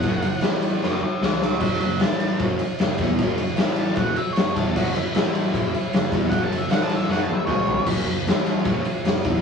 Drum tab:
CC |--------|x-------|--------|x-------|
RD |xxxx----|xxxxxxxx|xxxxxxxx|-xxxxxxx|
SD |--o-o-oo|--o---o-|--o---o-|--o---o-|
T1 |--------|--------|--------|--------|
T2 |--------|--------|--------|--------|
FT |--------|--------|--------|--------|
BD |o-------|o---o--o|o---o--o|o---o--o|

CC |--------|x-------|
RD |xxxx----|-xxxxxxx|
SD |--o-o---|--o---o-|
T1 |-----o--|--------|
T2 |------o-|--------|
FT |-------o|--------|
BD |o-------|o---o--o|